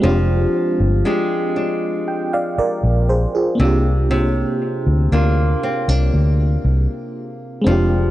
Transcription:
<<
  \new Staff \with { instrumentName = "FM electric piano" } { \time 4/4 \key c \minor \tempo 4 = 59 << { r2 g''16 <d'' f''>16 <bes' d''>8 <aes' c''>16 <f' aes'>8 r16 | r1 | } \\ { <aes c' d' f' g'>2.~ <aes c' d' f' g'>8 <bes c' d' f' g'>8~ | <bes c' d' f' g'>2.~ <bes c' d' f' g'>8 <aes c' d' f' g'>8 | } >> }
  \new Staff \with { instrumentName = "Nylon-string guitar" } { \time 4/4 \key c \minor f4 <aes d' g'>8 d'2 c8 | c4 <bes d' f'>8 c'16 d'4.~ d'16 f8 | }
  \new Staff \with { instrumentName = "Fingered electric bass" } { \clef bass \time 4/4 \key c \minor f,,8 r16 g,,16 r4. r16 bes,,8 r16 c,8~ | c,8 r16 d,16 d,8 r16 c,16 d,8 c,16 r8. f,,8 | }
>>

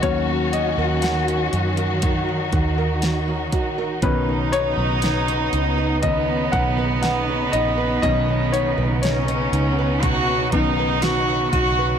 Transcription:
<<
  \new Staff \with { instrumentName = "Cello section" } { \time 4/4 \key b \major \tempo 4 = 60 r1 | dis'2 b2~ | b4 cis'4 fis'8 dis'8 fis'8 fis'8 | }
  \new Staff \with { instrumentName = "Nylon-string guitar" } { \time 4/4 \key b \major dis16 cis'16 fis'16 ais'16 fis'16 cis'16 fis'16 ais'16 dis16 cis'16 fis'16 ais'16 fis'16 cis'16 fis'16 ais'16 | b,16 cis'16 dis'16 b'16 dis'16 cis'16 dis'16 b'8 cis'16 dis'16 b'16 dis'16 cis'16 dis'16 b'16 | b,16 cis'16 dis'16 b'16 dis'16 cis'16 dis'16 b'16 b,16 cis'16 dis'16 b'16 dis'16 cis'16 dis'16 b'16 | }
  \new Staff \with { instrumentName = "Grand piano" } { \time 4/4 \key b \major cis''8 dis''8 fis''2 r4 | b'8 cis''4. dis''8 fis''8 fis''8 dis''8 | dis''8 cis''8 cis''2 r4 | }
  \new Staff \with { instrumentName = "Grand piano" } { \time 4/4 \key b \major <fis ais cis'>1 | <dis b cis'>2 <dis b cis'>8 r4. | <dis b cis'>4. r4 <dis b cis'>8 r4 | }
  \new Staff \with { instrumentName = "String section" } { \time 4/4 \key b \major << { <dis fis'>1 | cis1~ | cis1 | } \\ { cis'2 dis'2 | b1 | b1 | } >> }
  \new Staff \with { instrumentName = "Fingered electric bass" } { \clef bass \time 4/4 \key b \major dis,8. dis,8. fis,4 dis,4 ais,,8 | b,,8. b,,8. cis,4 b,,4 ais,,8 | b,,8. b,,8. cis,4 b,,4 b,,8 | }
  \new DrumStaff \with { instrumentName = "Drums" } \drummode { \time 4/4 <hh bd>8 hh8 <hh sn>16 hh16 hh16 hh16 <hh bd>8 <hh bd>8 <hh sn>8 <hh bd>8 | <hh bd>8 hh8 <hh sn>16 hh16 hh8 <hh bd>8 <hh bd>8 <hh sn>8 hh8 | <hh bd>8 hh8 <hh sn>16 hh16 hh8 <hh bd>8 <hh bd>8 <hh sn>8 <hh bd>8 | }
>>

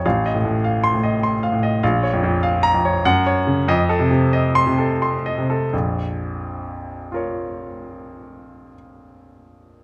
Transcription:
<<
  \new Staff \with { instrumentName = "Grand piano" } { \time 3/4 \key bes \minor \tempo 4 = 88 << { r4 \tuplet 3/2 { r8 c'''4 } r4 | r4 \tuplet 3/2 { r8 bes''4 } ges''8 r8 | r4 \tuplet 3/2 { r8 c'''4 } r4 | r2 <f' bes' des''>4~ |
<f' bes' des''>2. | } \\ { \tuplet 3/2 { f''8 ees''8 a,8 f''4 ees''8 c'''8 f''8 ees''8 } | \tuplet 3/2 { f''8 des''8 f,8 f''4 des''8 r8 des''8 des8 } | \tuplet 3/2 { ees''8 a'8 c8 ees''4 a'8 c'''8 ees''8 a'8 } | r2. |
r2. | } >> }
  \new Staff \with { instrumentName = "Grand piano" } { \clef bass \time 3/4 \key bes \minor a,,8 a,4 a,4 a,8 | bes,,8 f,4 f,8 ges,4 | f,8 c4 c4 c8 | <bes,, f,>2.~ |
<bes,, f,>2. | }
>>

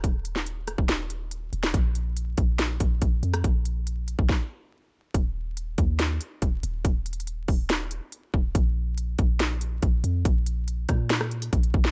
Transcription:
<<
  \new Staff \with { instrumentName = "808-style bass" } { \clef bass \time 4/4 \key bes \phrygian \tempo 4 = 141 ees,,4.~ ees,,16 ees,,4.~ ees,,16 ees,,8 | bes,,4. bes,,4 bes,,8 bes,,8 f,8 | bes,,4.~ bes,,16 bes,,16 r2 | ees,,4. ees,4 r8 ees,,8 ees,,8 |
ees,,4. ees,,4~ ees,,16 r8. ees,,8 | bes,,4. bes,,4. bes,,8 f,8 | bes,,4. bes,4. bes,,8 bes,,8 | }
  \new DrumStaff \with { instrumentName = "Drums" } \drummode { \time 4/4 <hh bd>8 hh16 sn16 hh8 <hh ss>16 bd16 <hh sn>8 hh8 hh8 hh16 <hh sn>16 | <hh bd>8 hh8 hh8 <hh bd>8 <hh sn>8 <hh bd>8 <hh bd>8 hh16 <hh ss>16 | <hh bd>8 hh8 hh8 hh16 bd16 <bd sn>4 r4 | <hh bd>4 hh8 <hh bd>8 <hh sn>8 hh8 <hh bd>8 hh8 |
\tuplet 3/2 { <hh bd>16 r16 r16 hh16 hh16 hh16 } hh8 <hho bd>8 <hh sn>8 hh8 hh8 bd8 | <hh bd>4 hh8 <hh bd>8 <hh sn>8 hh8 <hh bd>8 hh8 | <hh bd>8 hh8 hh8 <hh bd ss>8 <hh sn>16 ss16 hh16 hh16 <hh bd>16 hh16 bd16 sn16 | }
>>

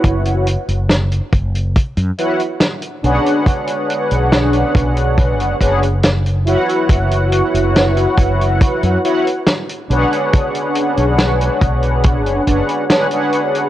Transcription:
<<
  \new Staff \with { instrumentName = "Analog polysynth" } { \time 4/4 \key b \dorian \tempo 4 = 70 <e' fis' b' cis'' fis''>8 r2 <e' fis' b' cis'' fis''>16 r8. <d' gis' b' cis'' fis''>8~ | <d' gis' b' cis'' fis''>2~ <d' gis' b' cis'' fis''>8 <d' gis' b' cis'' fis''>16 r8. <e' fis' b' cis'' fis''>8~ | <e' fis' b' cis'' fis''>2~ <e' fis' b' cis'' fis''>8 <e' fis' b' cis'' fis''>16 r8. <d' gis' b' cis'' fis''>8~ | <d' gis' b' cis'' fis''>2~ <d' gis' b' cis'' fis''>8 <d' gis' b' cis'' fis''>8 <d' gis' b' cis'' fis''>16 <d' gis' b' cis'' fis''>8. | }
  \new Staff \with { instrumentName = "Fretless electric bass" } { \clef bass \time 4/4 \key b \dorian fis,,8 r16 fis,,8 r16 fis,,8 r16 fis,16 r4 b,,16 r16 | r8. b,,8 r16 b,,8. fis,,16 fis,,4 r8 | fis,,8 r16 fis,,8 r16 fis,,8 r16 fis,16 r4 b,,16 r16 | r8. b,,8 r16 b,,8. fis,,16 fis,,16 r4 r16 | }
  \new DrumStaff \with { instrumentName = "Drums" } \drummode { \time 4/4 <hh bd>16 hh16 hh16 hh16 <hh sn>16 hh16 <hh bd>16 hh16 <hh bd>16 hh16 hh16 hh16 <hh sn>16 hh16 hh16 hh16 | <hh bd>16 hh16 hh16 hh16 <hh sn>16 hh16 <hh bd>16 hh16 <hh bd>16 hh16 <hh bd>16 hh16 <hh sn>16 hh16 hh16 hh16 | <hh bd>16 hh16 hh16 hh16 <hh sn>16 hh16 <hh bd>16 hh16 <hh bd>16 hh16 hh16 hh16 <hh sn>16 hh16 hh16 hh16 | <hh bd>16 hh16 hh16 hh16 <hh sn>16 hh16 <hh bd>16 hh16 <hh bd>16 hh16 <hh bd>16 hh16 <hh sn>16 hh16 hh16 hh16 | }
>>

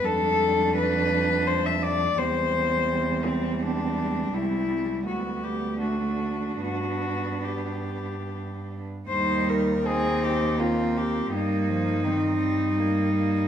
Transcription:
<<
  \new Staff \with { instrumentName = "Cello" } { \time 3/4 \key g \major \tempo 4 = 82 a'4 b'4 c''16 e''16 d''8 | c''4. c'8 d'4 | e'4 fis'8 g'8 fis'4 | fis'4 g'4. r8 |
\key ees \major c''8 bes'8 aes'8 g'8 f'8 g'8 | ees'2. | }
  \new Staff \with { instrumentName = "Cello" } { \time 3/4 \key g \major d'2. | c'2.~ | c'4 b4 d'4~ | d'2~ d'8. r16 |
\key ees \major ees'4 ees'4 c'4 | bes4 c'4 bes8 bes8 | }
  \new Staff \with { instrumentName = "Cello" } { \clef bass \time 3/4 \key g \major g2. | g2.~ | g2 a4 | b2~ b8. r16 |
\key ees \major g4 c'4 bes4 | g8 f8 ees8 g4. | }
  \new Staff \with { instrumentName = "Cello" } { \clef bass \time 3/4 \key g \major f,2. | e,2. | c,4 d,2 | g,2~ g,8. r16 |
\key ees \major ees,2. | g,2. | }
>>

